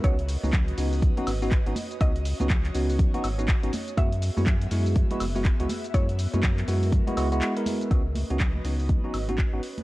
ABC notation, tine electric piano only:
X:1
M:4/4
L:1/16
Q:"Swing 16ths" 1/4=122
K:C#m
V:1 name="Tine electric piano"
[B,CDF] z2 [B,CDF] z2 [B,CDF]3 [B,CDF] z [B,CDF] z [B,CDF] z2 | [B,CDF] z2 [B,CDF] z2 [B,CDF]3 [B,CDF] z [B,CDF] z [B,CDF] z2 | [G,B,EF] z2 [G,B,EF] z2 [G,B,EF]3 [G,B,EF] z [G,B,EF] z [G,B,EF] z2 | [G,B,EF] z2 [G,B,EF] z2 [G,B,EF]3 [G,B,EF] [G,B,EF] [G,B,EF]2 [G,B,E^A]3 |
[B,CDF] z2 [B,CDF] z2 [B,CDF]3 [B,CDF] z [B,CDF] z [B,CDF] z2 |]